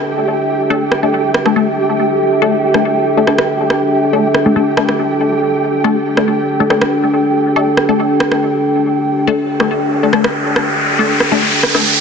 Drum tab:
SD |--------r---rr--|---------r----rr|--r-----r---rr--|---------r----rr|

SD |--------r---rr--|---------r----rr|--r-----r---rr--|